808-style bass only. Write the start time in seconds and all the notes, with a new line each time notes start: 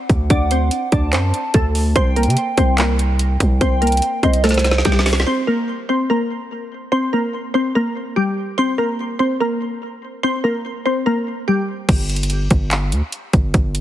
0.09 D2
0.30 D2
0.92 D2
1.13 F#2
1.54 D2
1.96 C2
2.27 C3
2.58 C2
3.40 C2
3.61 C2
4.23 C2
4.85 C2
11.89 G1
12.51 G1
12.92 D2
13.33 G1
13.54 G1